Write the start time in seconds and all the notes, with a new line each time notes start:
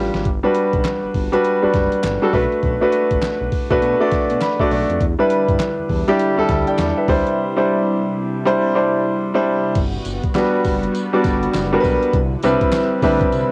Already playing: G3 D4 F4 G4 B4
0.14 G#1, snare, closed hi-hat
0.25 G1, kick, closed hi-hat
0.43 G3 D4 F#4 B4
0.55 closed hi-hat
0.73 B1, kick, closed hi-hat
0.85 snare, clap, closed hi-hat
1.03 G1
1.14 G1, kick, open hi-hat
1.32 G3 D4 F#4 B4, closed hi-hat
1.44 closed hi-hat
1.62 F#1 G3 D4 F#4 B4
1.74 F#1, kick, snare, closed hi-hat
1.92 closed hi-hat
2.04 G1, snare, clap, closed hi-hat
2.22 G3 D4 F#4 A4
2.33 B1 A3 D4 F#4 B4, kick, open hi-hat
2.52 closed hi-hat
2.63 B1, kick, closed hi-hat
2.81 A3 D4 F#4 B4
2.92 closed hi-hat
3.11 A1, kick, closed hi-hat
3.22 snare, clap, closed hi-hat
3.41 B1
3.52 kick, open hi-hat
3.70 B1 A3 D4 F#4 B4, kick, closed hi-hat
3.82 B2, closed hi-hat
4.00 A3 D4 F#4 D5
4.12 B2, kick, snare, closed hi-hat
4.30 B2, closed hi-hat
4.41 B5, snare, clap, closed hi-hat
4.59 A3 D4 F#4 D5, kick
4.71 B1 D5, open hi-hat
4.89 F2, closed hi-hat
5.01 E2 D3 G3 E4, kick, closed hi-hat
5.19 G3 D4 E4 B4
5.30 closed hi-hat
5.49 G2, kick, closed hi-hat
5.60 snare, clap, closed hi-hat
5.78 E2
5.90 E2, kick, open hi-hat
6.08 G3 D4 E4 G4, closed hi-hat
6.20 closed hi-hat
6.38 D2 G3 D4 E4 A4
6.49 D2 E5 A5, kick, snare, closed hi-hat
6.67 D5 G5, closed hi-hat
6.78 E2, snare, clap, closed hi-hat
6.97 B4 E5
7.08 D2 C3 G3 D4 E4 C5, kick, open hi-hat
7.27 closed hi-hat
7.56 G3 D4 E4 C5
8.45 G3 D4 E4 C5
8.75 G3 D4 E4 C5
9.34 G3 D4 E4 C5
9.75 G1 G3 B3 F#4, kick, closed hi-hat, crash
10.05 G1, closed hi-hat, tambourine
10.23 kick, closed hi-hat
10.35 G3 B3 D4 F#4 B4, snare, clap, closed hi-hat, tambourine
10.64 F#1, kick, open hi-hat, tambourine
10.83 closed hi-hat
10.95 closed hi-hat, tambourine
11.13 G3 B3 D4 F#4 D5
11.24 G1, kick, snare, closed hi-hat, tambourine
11.43 closed hi-hat
11.54 F#1, snare, clap, closed hi-hat, tambourine
11.72 G3 B3 D4 F#4 A#4
11.80 B1 B4, kick, open hi-hat, tambourine
12.03 closed hi-hat
12.13 C2 D3 E4 B4, kick, closed hi-hat
12.43 C2 G3 C4 D4 E4 B4, closed hi-hat, tambourine
12.61 kick, closed hi-hat
12.73 snare, clap, closed hi-hat, tambourine
13.03 D2 G3 C4 D4 E4 B4, kick, open hi-hat, tambourine
13.21 kick, closed hi-hat
13.32 C2, closed hi-hat, tambourine